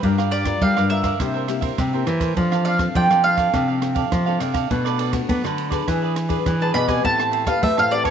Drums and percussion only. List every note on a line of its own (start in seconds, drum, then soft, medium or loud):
0.03 kick medium
0.03 ride medium
0.18 cross-stick medium
0.32 ride medium
0.45 kick medium
0.45 cross-stick medium
0.45 ride medium
0.61 kick medium
0.61 ride medium
0.77 cross-stick medium
0.90 ride soft
1.04 kick medium
1.04 cross-stick medium
1.04 ride soft
1.20 kick medium
1.20 cross-stick medium
1.20 ride medium
1.48 cross-stick medium
1.48 ride soft
1.62 kick medium
1.62 ride medium
1.78 kick medium
1.78 cross-stick medium
1.78 ride soft
2.07 cross-stick medium
2.07 ride soft
2.21 kick medium
2.21 cross-stick medium
2.21 ride soft
2.37 kick medium
2.37 ride soft
2.52 cross-stick medium
2.65 ride soft
2.79 kick medium
2.79 cross-stick medium
2.79 ride soft
2.95 kick medium
2.95 ride soft
3.11 cross-stick medium
3.24 ride soft
3.37 kick medium
3.37 cross-stick medium
3.37 ride soft
3.54 kick medium
3.54 cross-stick medium
3.54 ride medium
3.82 cross-stick medium
3.82 ride soft
3.96 kick medium
3.96 ride medium
4.12 kick loud
4.12 cross-stick medium
4.12 ride soft
4.40 cross-stick medium
4.40 ride medium
4.54 kick medium
4.54 cross-stick medium
4.54 ride soft
4.71 kick medium
4.71 ride medium
4.86 cross-stick medium
4.99 ride medium
5.13 kick medium
5.13 cross-stick medium
5.13 ride medium
5.29 kick medium
5.29 ride medium
5.45 cross-stick medium
5.58 ride medium
5.71 kick medium
5.71 cross-stick medium
5.71 ride soft
5.88 kick medium
5.88 cross-stick medium
5.88 ride medium
6.16 cross-stick medium
6.16 ride medium
6.30 kick medium
6.30 ride medium
6.46 kick medium
6.46 cross-stick medium
6.46 ride medium
6.75 cross-stick medium
6.75 ride soft
6.88 kick medium
6.88 cross-stick medium
6.88 ride soft
7.05 kick medium
7.05 ride soft
7.20 cross-stick medium
7.33 ride medium
7.47 kick medium
7.47 cross-stick medium
7.47 ride soft
7.63 kick medium
7.63 ride soft
7.78 cross-stick medium
7.91 ride soft
8.05 kick medium
8.05 cross-stick medium
8.05 ride soft